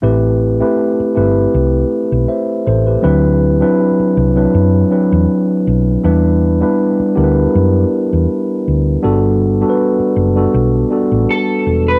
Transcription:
0.02 A1 A3 C4 E4 G4 B4
0.60 A3 C4 E4 G4 B4
1.00 muted fingered electric bass stroke
1.15 G1 A3 C4 E4 G4 B4
1.54 C2
2.12 B1
2.28 C5 E5
2.67 A1 A4 C5
2.87 G4 B4
3.02 D2 F#3 C4 D4 E4 B4
3.60 F#3 C4 D4 E4 B4
3.99 muted fingered electric bass stroke
4.17 C2
4.36 F#3 C4 D4 E4 B4
4.54 F#2
4.90 F#3 C4 D4 E4 B4
5.12 E2
5.67 B1
6.03 E2 G3 B3 D4 E4 B4
6.61 G3 B3 D4 E4 B4
7.00 muted fingered electric bass stroke
7.15 D2 B3 D4 E4 G4 A#4
7.24 B4
7.55 F#2
8.13 E2
8.68 D2
9.02 G1 G3 B3 D4 F#4 A4
9.61 G3 B3 D4 F#4 A4
9.69 B4
9.99 muted fingered electric bass stroke
10.16 F#1
10.36 G3 B3 D4 F#4 A4
10.54 B1
10.91 G3 B3 D4 F#4 A4
11.12 A1
11.31 A4
11.66 E1
11.88 B4

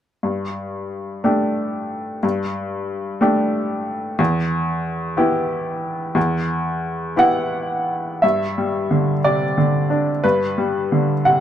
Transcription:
0.23 G2
1.24 A3 D4 G4
2.23 G2
3.21 A3 D4 G4
4.19 E2
5.17 B3 E4 G4
6.15 E2
7.16 B3 E4 G4 F#5
8.22 G2 E5
8.58 G3
8.91 D3
9.24 C3 D5
9.58 D3
9.90 D4
10.24 G2 B4
10.58 G3
10.92 D3
11.25 C3 F#5

